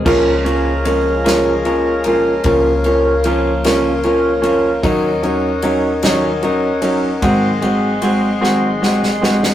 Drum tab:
CC |x-----------|------------|------------|------------|
RD |--x-x-x-x-x-|x-x-x-x-x-x-|x-x-x-x-x-x-|x-x-x-------|
SD |------o-----|------o-----|------o-----|------o-oooo|
BD |o-----------|o-----------|o-----------|o-----------|